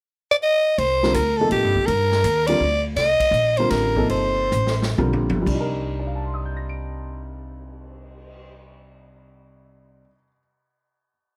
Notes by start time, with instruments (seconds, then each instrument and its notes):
0.31 soprano saxophone D5
0.43 soprano saxophone D#5
0.78 upright bass C2, soprano saxophone C5, ride
1.03 upright piano D3 G3 C4 F4 A#4, snare
1.14 upright bass D2, soprano saxophone A#4, hi-hat pedal, ride
1.37 upright piano C3 F3 A#3 D#4 A4, soprano saxophone A4
1.51 upright bass A2, soprano saxophone G4, ride
1.64 upright bass G2
1.75 upright bass D#2, kick
1.86 upright bass G2, soprano saxophone A#4, ride
2.11 snare
2.24 upright bass D#2, hi-hat pedal, ride
2.47 upright piano D3 G3 C4 F4 A#4, soprano saxophone D5, ride
2.60 upright bass D2
2.96 upright bass C2, soprano saxophone D#5, snare, ride
3.20 muted upright bass stroke, kick, ride
3.31 upright bass A#1, hi-hat pedal
3.57 upright piano D3 G3 C4 F4 A#4, soprano saxophone C5, ride
3.70 upright bass A1, soprano saxophone A#4, snare, ride
3.96 upright piano C3 F3 A#3 D#4 A4, kick
4.09 upright bass G1, soprano saxophone C5, ride
4.52 upright bass A1, hi-hat pedal
4.67 snare
4.82 snare
4.98 upright bass B1, upright piano D3 G3 C4 F4 A#4, high tom
5.13 upright bass A#1, high tom
5.29 upright bass G1, high tom
5.35 upright piano C3
5.42 upright piano G3
5.46 upright bass C2, upright piano D4, kick, crash
5.54 upright piano D#4
5.60 upright piano A#4
5.81 cymbal swell
5.99 upright piano D5
6.07 upright piano F5
6.15 upright piano A5
6.24 upright piano C6
6.34 upright piano D#6
6.45 upright piano G6
6.57 upright piano A#6
6.69 upright piano D7